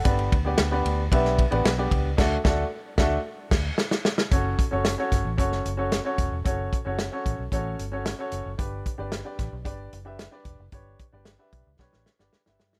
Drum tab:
CC |----------------|x---------x-----|----------------|----------------|
RD |xxx-x-x-x-xxx-x-|----------------|----------------|----------------|
HH |p---------------|----------------|x-x-x-x-x-x-x-x-|x-x-x-x-x-x-x-x-|
SD |----o----o--o---|o-o---o---o-oooo|----o-o--o--o---|----o-------o---|
BD |o-o-----o-o---o-|o-o---o---o-----|o-o---o-o-----o-|o-o---o-o-------|

CC |----------------|----------------|
RD |----------------|----------------|
HH |x-x-x-x-x-x-x-x-|x-x-x-x---------|
SD |----o-o-----o---|----o---oooooooo|
BD |o-o---o-o-----o-|o-o---o-o-------|